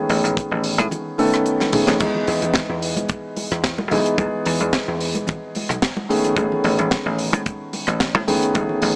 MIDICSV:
0, 0, Header, 1, 5, 480
1, 0, Start_track
1, 0, Tempo, 545455
1, 1765, Time_signature, 4, 2, 24, 8
1, 7881, End_track
2, 0, Start_track
2, 0, Title_t, "Grand piano"
2, 0, Program_c, 0, 0
2, 0, Note_on_c, 0, 51, 84
2, 0, Note_on_c, 0, 57, 77
2, 0, Note_on_c, 0, 59, 75
2, 0, Note_on_c, 0, 61, 77
2, 0, Note_on_c, 0, 68, 92
2, 1018, Note_off_c, 0, 51, 0
2, 1021, Note_off_c, 0, 57, 0
2, 1023, Note_off_c, 0, 59, 0
2, 1025, Note_off_c, 0, 61, 0
2, 1027, Note_off_c, 0, 68, 0
2, 1040, Note_on_c, 0, 51, 87
2, 1040, Note_on_c, 0, 57, 75
2, 1043, Note_on_c, 0, 59, 74
2, 1047, Note_on_c, 0, 61, 80
2, 1049, Note_on_c, 0, 69, 94
2, 1495, Note_off_c, 0, 51, 0
2, 1495, Note_off_c, 0, 57, 0
2, 1497, Note_off_c, 0, 59, 0
2, 1499, Note_off_c, 0, 61, 0
2, 1500, Note_off_c, 0, 69, 0
2, 1518, Note_on_c, 0, 51, 75
2, 1520, Note_on_c, 0, 57, 68
2, 1523, Note_on_c, 0, 59, 67
2, 1527, Note_on_c, 0, 61, 64
2, 1529, Note_on_c, 0, 68, 81
2, 1734, Note_off_c, 0, 51, 0
2, 1735, Note_off_c, 0, 57, 0
2, 1737, Note_off_c, 0, 59, 0
2, 1739, Note_off_c, 0, 61, 0
2, 1740, Note_off_c, 0, 68, 0
2, 1757, Note_on_c, 0, 52, 82
2, 1763, Note_on_c, 0, 56, 74
2, 1767, Note_on_c, 0, 59, 77
2, 1771, Note_on_c, 0, 63, 80
2, 1774, Note_on_c, 0, 68, 93
2, 3414, Note_off_c, 0, 52, 0
2, 3417, Note_off_c, 0, 56, 0
2, 3419, Note_off_c, 0, 59, 0
2, 3421, Note_off_c, 0, 63, 0
2, 3422, Note_off_c, 0, 68, 0
2, 3441, Note_on_c, 0, 52, 80
2, 3441, Note_on_c, 0, 56, 72
2, 3444, Note_on_c, 0, 59, 74
2, 3445, Note_on_c, 0, 63, 78
2, 3451, Note_on_c, 0, 68, 87
2, 3656, Note_off_c, 0, 52, 0
2, 3656, Note_off_c, 0, 56, 0
2, 3657, Note_off_c, 0, 59, 0
2, 3658, Note_off_c, 0, 63, 0
2, 3661, Note_off_c, 0, 68, 0
2, 3676, Note_on_c, 0, 52, 80
2, 3678, Note_on_c, 0, 56, 80
2, 3683, Note_on_c, 0, 59, 78
2, 3688, Note_on_c, 0, 63, 77
2, 3694, Note_on_c, 0, 68, 94
2, 5333, Note_off_c, 0, 52, 0
2, 5335, Note_off_c, 0, 56, 0
2, 5337, Note_off_c, 0, 59, 0
2, 5339, Note_off_c, 0, 63, 0
2, 5342, Note_off_c, 0, 68, 0
2, 5359, Note_on_c, 0, 51, 80
2, 5360, Note_on_c, 0, 57, 75
2, 5362, Note_on_c, 0, 59, 71
2, 5366, Note_on_c, 0, 61, 72
2, 5368, Note_on_c, 0, 68, 92
2, 5575, Note_off_c, 0, 51, 0
2, 5575, Note_off_c, 0, 57, 0
2, 5576, Note_off_c, 0, 59, 0
2, 5578, Note_off_c, 0, 61, 0
2, 5579, Note_off_c, 0, 68, 0
2, 5597, Note_on_c, 0, 51, 88
2, 5600, Note_on_c, 0, 57, 80
2, 5605, Note_on_c, 0, 59, 75
2, 5609, Note_on_c, 0, 61, 78
2, 5614, Note_on_c, 0, 68, 93
2, 7254, Note_off_c, 0, 51, 0
2, 7255, Note_off_c, 0, 57, 0
2, 7258, Note_off_c, 0, 59, 0
2, 7260, Note_off_c, 0, 61, 0
2, 7262, Note_off_c, 0, 68, 0
2, 7280, Note_on_c, 0, 51, 82
2, 7281, Note_on_c, 0, 57, 71
2, 7285, Note_on_c, 0, 59, 76
2, 7285, Note_on_c, 0, 61, 76
2, 7288, Note_on_c, 0, 68, 88
2, 7495, Note_off_c, 0, 51, 0
2, 7496, Note_off_c, 0, 57, 0
2, 7498, Note_off_c, 0, 59, 0
2, 7498, Note_off_c, 0, 61, 0
2, 7499, Note_off_c, 0, 68, 0
2, 7510, Note_on_c, 0, 51, 83
2, 7514, Note_on_c, 0, 57, 76
2, 7520, Note_on_c, 0, 59, 78
2, 7523, Note_on_c, 0, 61, 74
2, 7528, Note_on_c, 0, 68, 95
2, 7881, Note_off_c, 0, 51, 0
2, 7881, Note_off_c, 0, 57, 0
2, 7881, Note_off_c, 0, 59, 0
2, 7881, Note_off_c, 0, 61, 0
2, 7881, Note_off_c, 0, 68, 0
2, 7881, End_track
3, 0, Start_track
3, 0, Title_t, "Slap bass"
3, 0, Program_c, 1, 36
3, 82, Note_on_c, 1, 33, 87
3, 163, Note_off_c, 1, 33, 0
3, 209, Note_on_c, 1, 33, 87
3, 355, Note_off_c, 1, 33, 0
3, 451, Note_on_c, 1, 33, 86
3, 689, Note_off_c, 1, 33, 0
3, 689, Note_on_c, 1, 45, 83
3, 761, Note_off_c, 1, 45, 0
3, 1649, Note_on_c, 1, 33, 82
3, 1721, Note_off_c, 1, 33, 0
3, 1766, Note_on_c, 1, 40, 93
3, 1844, Note_off_c, 1, 40, 0
3, 2003, Note_on_c, 1, 40, 90
3, 2083, Note_off_c, 1, 40, 0
3, 2131, Note_on_c, 1, 40, 89
3, 2276, Note_off_c, 1, 40, 0
3, 2368, Note_on_c, 1, 40, 82
3, 2610, Note_off_c, 1, 40, 0
3, 2610, Note_on_c, 1, 28, 85
3, 2681, Note_off_c, 1, 28, 0
3, 3091, Note_on_c, 1, 40, 88
3, 3333, Note_off_c, 1, 40, 0
3, 3333, Note_on_c, 1, 28, 86
3, 3403, Note_off_c, 1, 28, 0
3, 3443, Note_on_c, 1, 35, 73
3, 3523, Note_off_c, 1, 35, 0
3, 3679, Note_on_c, 1, 40, 94
3, 3761, Note_off_c, 1, 40, 0
3, 3925, Note_on_c, 1, 40, 89
3, 4004, Note_off_c, 1, 40, 0
3, 4051, Note_on_c, 1, 40, 85
3, 4196, Note_off_c, 1, 40, 0
3, 4293, Note_on_c, 1, 40, 85
3, 4530, Note_off_c, 1, 40, 0
3, 4530, Note_on_c, 1, 28, 84
3, 4602, Note_off_c, 1, 28, 0
3, 5011, Note_on_c, 1, 35, 97
3, 5082, Note_off_c, 1, 35, 0
3, 5602, Note_on_c, 1, 33, 93
3, 5683, Note_off_c, 1, 33, 0
3, 5844, Note_on_c, 1, 33, 87
3, 5924, Note_off_c, 1, 33, 0
3, 5970, Note_on_c, 1, 33, 91
3, 6116, Note_off_c, 1, 33, 0
3, 6210, Note_on_c, 1, 33, 89
3, 6451, Note_off_c, 1, 33, 0
3, 6451, Note_on_c, 1, 45, 84
3, 6522, Note_off_c, 1, 45, 0
3, 6929, Note_on_c, 1, 33, 90
3, 7169, Note_off_c, 1, 33, 0
3, 7169, Note_on_c, 1, 45, 82
3, 7241, Note_off_c, 1, 45, 0
3, 7279, Note_on_c, 1, 40, 75
3, 7361, Note_off_c, 1, 40, 0
3, 7526, Note_on_c, 1, 33, 96
3, 7605, Note_off_c, 1, 33, 0
3, 7762, Note_on_c, 1, 33, 87
3, 7843, Note_off_c, 1, 33, 0
3, 7881, End_track
4, 0, Start_track
4, 0, Title_t, "Muted slap bass strokes"
4, 1521, Note_on_c, 9, 29, 39
4, 1609, Note_off_c, 9, 29, 0
4, 7881, End_track
5, 0, Start_track
5, 0, Title_t, "Drums"
5, 83, Note_on_c, 9, 46, 99
5, 171, Note_off_c, 9, 46, 0
5, 215, Note_on_c, 9, 63, 55
5, 219, Note_on_c, 9, 42, 78
5, 303, Note_off_c, 9, 63, 0
5, 307, Note_off_c, 9, 42, 0
5, 326, Note_on_c, 9, 36, 114
5, 334, Note_on_c, 9, 42, 70
5, 414, Note_off_c, 9, 36, 0
5, 422, Note_off_c, 9, 42, 0
5, 560, Note_on_c, 9, 46, 104
5, 648, Note_off_c, 9, 46, 0
5, 697, Note_on_c, 9, 42, 78
5, 698, Note_on_c, 9, 63, 80
5, 785, Note_off_c, 9, 42, 0
5, 786, Note_off_c, 9, 63, 0
5, 804, Note_on_c, 9, 64, 86
5, 808, Note_on_c, 9, 42, 65
5, 892, Note_off_c, 9, 64, 0
5, 896, Note_off_c, 9, 42, 0
5, 1039, Note_on_c, 9, 63, 53
5, 1046, Note_on_c, 9, 46, 96
5, 1127, Note_off_c, 9, 63, 0
5, 1134, Note_off_c, 9, 46, 0
5, 1176, Note_on_c, 9, 37, 76
5, 1176, Note_on_c, 9, 42, 75
5, 1264, Note_off_c, 9, 37, 0
5, 1264, Note_off_c, 9, 42, 0
5, 1282, Note_on_c, 9, 42, 60
5, 1370, Note_off_c, 9, 42, 0
5, 1411, Note_on_c, 9, 38, 48
5, 1419, Note_on_c, 9, 63, 73
5, 1499, Note_off_c, 9, 38, 0
5, 1507, Note_off_c, 9, 63, 0
5, 1518, Note_on_c, 9, 46, 103
5, 1523, Note_on_c, 9, 47, 74
5, 1606, Note_off_c, 9, 46, 0
5, 1611, Note_off_c, 9, 47, 0
5, 1646, Note_on_c, 9, 38, 75
5, 1649, Note_on_c, 9, 42, 80
5, 1652, Note_on_c, 9, 64, 78
5, 1734, Note_off_c, 9, 38, 0
5, 1737, Note_off_c, 9, 42, 0
5, 1740, Note_off_c, 9, 64, 0
5, 1759, Note_on_c, 9, 42, 69
5, 1762, Note_on_c, 9, 49, 79
5, 1765, Note_on_c, 9, 36, 125
5, 1770, Note_on_c, 9, 63, 77
5, 1847, Note_off_c, 9, 42, 0
5, 1850, Note_off_c, 9, 49, 0
5, 1853, Note_off_c, 9, 36, 0
5, 1858, Note_off_c, 9, 63, 0
5, 1890, Note_on_c, 9, 64, 80
5, 1978, Note_off_c, 9, 64, 0
5, 2001, Note_on_c, 9, 46, 100
5, 2089, Note_off_c, 9, 46, 0
5, 2123, Note_on_c, 9, 63, 61
5, 2130, Note_on_c, 9, 42, 77
5, 2211, Note_off_c, 9, 63, 0
5, 2218, Note_off_c, 9, 42, 0
5, 2232, Note_on_c, 9, 38, 107
5, 2246, Note_on_c, 9, 42, 66
5, 2249, Note_on_c, 9, 36, 120
5, 2320, Note_off_c, 9, 38, 0
5, 2334, Note_off_c, 9, 42, 0
5, 2337, Note_off_c, 9, 36, 0
5, 2484, Note_on_c, 9, 46, 113
5, 2572, Note_off_c, 9, 46, 0
5, 2608, Note_on_c, 9, 63, 88
5, 2613, Note_on_c, 9, 42, 66
5, 2696, Note_off_c, 9, 63, 0
5, 2701, Note_off_c, 9, 42, 0
5, 2715, Note_on_c, 9, 42, 62
5, 2724, Note_on_c, 9, 36, 123
5, 2803, Note_off_c, 9, 42, 0
5, 2812, Note_off_c, 9, 36, 0
5, 2961, Note_on_c, 9, 46, 103
5, 2964, Note_on_c, 9, 63, 57
5, 3049, Note_off_c, 9, 46, 0
5, 3052, Note_off_c, 9, 63, 0
5, 3093, Note_on_c, 9, 42, 66
5, 3096, Note_on_c, 9, 37, 72
5, 3181, Note_off_c, 9, 42, 0
5, 3184, Note_off_c, 9, 37, 0
5, 3200, Note_on_c, 9, 38, 115
5, 3204, Note_on_c, 9, 36, 116
5, 3208, Note_on_c, 9, 42, 62
5, 3288, Note_off_c, 9, 38, 0
5, 3292, Note_off_c, 9, 36, 0
5, 3296, Note_off_c, 9, 42, 0
5, 3329, Note_on_c, 9, 62, 47
5, 3331, Note_on_c, 9, 63, 85
5, 3417, Note_off_c, 9, 62, 0
5, 3419, Note_off_c, 9, 63, 0
5, 3443, Note_on_c, 9, 46, 105
5, 3531, Note_off_c, 9, 46, 0
5, 3570, Note_on_c, 9, 42, 76
5, 3658, Note_off_c, 9, 42, 0
5, 3680, Note_on_c, 9, 36, 127
5, 3680, Note_on_c, 9, 42, 60
5, 3684, Note_on_c, 9, 63, 88
5, 3686, Note_on_c, 9, 62, 50
5, 3768, Note_off_c, 9, 36, 0
5, 3768, Note_off_c, 9, 42, 0
5, 3772, Note_off_c, 9, 63, 0
5, 3774, Note_off_c, 9, 62, 0
5, 3920, Note_on_c, 9, 46, 111
5, 4008, Note_off_c, 9, 46, 0
5, 4049, Note_on_c, 9, 42, 65
5, 4054, Note_on_c, 9, 63, 64
5, 4137, Note_off_c, 9, 42, 0
5, 4142, Note_off_c, 9, 63, 0
5, 4162, Note_on_c, 9, 38, 121
5, 4164, Note_on_c, 9, 36, 102
5, 4165, Note_on_c, 9, 42, 67
5, 4250, Note_off_c, 9, 38, 0
5, 4252, Note_off_c, 9, 36, 0
5, 4253, Note_off_c, 9, 42, 0
5, 4404, Note_on_c, 9, 46, 112
5, 4492, Note_off_c, 9, 46, 0
5, 4531, Note_on_c, 9, 42, 69
5, 4534, Note_on_c, 9, 63, 78
5, 4619, Note_off_c, 9, 42, 0
5, 4622, Note_off_c, 9, 63, 0
5, 4637, Note_on_c, 9, 64, 84
5, 4642, Note_on_c, 9, 42, 62
5, 4653, Note_on_c, 9, 36, 121
5, 4725, Note_off_c, 9, 64, 0
5, 4730, Note_off_c, 9, 42, 0
5, 4741, Note_off_c, 9, 36, 0
5, 4883, Note_on_c, 9, 46, 93
5, 4895, Note_on_c, 9, 63, 68
5, 4971, Note_off_c, 9, 46, 0
5, 4983, Note_off_c, 9, 63, 0
5, 5010, Note_on_c, 9, 37, 71
5, 5020, Note_on_c, 9, 42, 66
5, 5098, Note_off_c, 9, 37, 0
5, 5108, Note_off_c, 9, 42, 0
5, 5124, Note_on_c, 9, 38, 120
5, 5129, Note_on_c, 9, 36, 119
5, 5134, Note_on_c, 9, 42, 66
5, 5212, Note_off_c, 9, 38, 0
5, 5217, Note_off_c, 9, 36, 0
5, 5222, Note_off_c, 9, 42, 0
5, 5250, Note_on_c, 9, 63, 81
5, 5338, Note_off_c, 9, 63, 0
5, 5372, Note_on_c, 9, 46, 101
5, 5460, Note_off_c, 9, 46, 0
5, 5496, Note_on_c, 9, 42, 76
5, 5496, Note_on_c, 9, 62, 34
5, 5496, Note_on_c, 9, 64, 74
5, 5584, Note_off_c, 9, 42, 0
5, 5584, Note_off_c, 9, 62, 0
5, 5584, Note_off_c, 9, 64, 0
5, 5601, Note_on_c, 9, 36, 127
5, 5603, Note_on_c, 9, 42, 62
5, 5613, Note_on_c, 9, 63, 84
5, 5689, Note_off_c, 9, 36, 0
5, 5691, Note_off_c, 9, 42, 0
5, 5701, Note_off_c, 9, 63, 0
5, 5738, Note_on_c, 9, 64, 76
5, 5826, Note_off_c, 9, 64, 0
5, 5842, Note_on_c, 9, 46, 100
5, 5930, Note_off_c, 9, 46, 0
5, 5973, Note_on_c, 9, 42, 78
5, 5979, Note_on_c, 9, 63, 66
5, 6061, Note_off_c, 9, 42, 0
5, 6067, Note_off_c, 9, 63, 0
5, 6082, Note_on_c, 9, 38, 115
5, 6088, Note_on_c, 9, 36, 121
5, 6088, Note_on_c, 9, 42, 61
5, 6170, Note_off_c, 9, 38, 0
5, 6176, Note_off_c, 9, 36, 0
5, 6176, Note_off_c, 9, 42, 0
5, 6323, Note_on_c, 9, 46, 111
5, 6411, Note_off_c, 9, 46, 0
5, 6448, Note_on_c, 9, 63, 89
5, 6451, Note_on_c, 9, 42, 69
5, 6536, Note_off_c, 9, 63, 0
5, 6539, Note_off_c, 9, 42, 0
5, 6564, Note_on_c, 9, 42, 59
5, 6567, Note_on_c, 9, 36, 112
5, 6652, Note_off_c, 9, 42, 0
5, 6655, Note_off_c, 9, 36, 0
5, 6804, Note_on_c, 9, 46, 100
5, 6805, Note_on_c, 9, 63, 60
5, 6892, Note_off_c, 9, 46, 0
5, 6893, Note_off_c, 9, 63, 0
5, 6926, Note_on_c, 9, 37, 71
5, 6931, Note_on_c, 9, 42, 70
5, 7014, Note_off_c, 9, 37, 0
5, 7019, Note_off_c, 9, 42, 0
5, 7041, Note_on_c, 9, 38, 112
5, 7047, Note_on_c, 9, 36, 113
5, 7052, Note_on_c, 9, 42, 62
5, 7129, Note_off_c, 9, 38, 0
5, 7135, Note_off_c, 9, 36, 0
5, 7140, Note_off_c, 9, 42, 0
5, 7174, Note_on_c, 9, 62, 47
5, 7176, Note_on_c, 9, 63, 87
5, 7262, Note_off_c, 9, 62, 0
5, 7264, Note_off_c, 9, 63, 0
5, 7285, Note_on_c, 9, 46, 107
5, 7373, Note_off_c, 9, 46, 0
5, 7417, Note_on_c, 9, 42, 80
5, 7505, Note_off_c, 9, 42, 0
5, 7521, Note_on_c, 9, 42, 60
5, 7522, Note_on_c, 9, 62, 44
5, 7524, Note_on_c, 9, 63, 98
5, 7525, Note_on_c, 9, 36, 113
5, 7609, Note_off_c, 9, 42, 0
5, 7610, Note_off_c, 9, 62, 0
5, 7612, Note_off_c, 9, 63, 0
5, 7613, Note_off_c, 9, 36, 0
5, 7650, Note_on_c, 9, 64, 74
5, 7738, Note_off_c, 9, 64, 0
5, 7759, Note_on_c, 9, 46, 115
5, 7847, Note_off_c, 9, 46, 0
5, 7881, End_track
0, 0, End_of_file